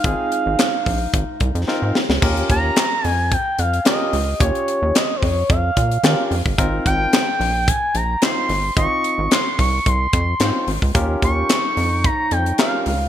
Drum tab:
CC |----------------|x---------------|----------------|----------------|
HH |x-x-x-o-x-xx----|-xx-x-o-x-xxx-o-|xxx-x-o-x-xxx-o-|x-x-x-o-x-x-x-o-|
CP |----x-----------|----x-------x---|----x-------x---|----x-------x---|
SD |----o-------o-oo|----o-------o---|----o-------o---|----o-------o---|
BD |o-----o-o-o-----|o-o-----o-------|o-----o-o-o----o|o-o-----o-------|

CC |----------------|----------------|
HH |x-x-x-o-x-x-x-o-|x-x-x-o-x-xxx-o-|
CP |----x-------x---|----x-------x---|
SD |----o-------o---|----o-------o---|
BD |o-----o-o-o----o|o-o-----o-------|